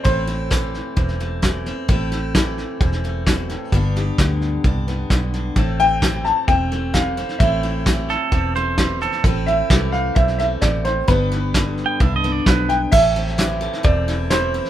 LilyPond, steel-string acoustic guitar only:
\new Staff \with { instrumentName = "Steel-string acoustic guitar" } { \time 4/4 \key a \minor \tempo 4 = 130 << { <a c' e'>8 e'8 a4 c'8 a4 c'8 | <a c' e'>8 e'8 a4 c'8 a4. | <b d' g'>8 g'8 b4 d'8 b4 d'8 | <a c'>8 c'8 a4 c'8 a4 c'8 |
<a c' e'>8 e'8 a4 c'8 a4 c'8 | <a c' e'>8 e'8 a4 c'8 a4. | <b d' g'>8 g'8 b4 d'8 b4. | r8 c'4 a8 c'8 e'8 c'8 e'8 | } \\ { a,4 e4 e,4 e4 | a,4 e4 e,4 b,8 a,8 | g,4 d4 g,4 d4 | a,4 e4 e,4 e4 |
a,4 e4 e,4 e4 | a,4 e4 e,4 b,8 a,8 | g,4 d4 g,4 f,8 g,8 | a,4 e4 e,4 e4 | } >> }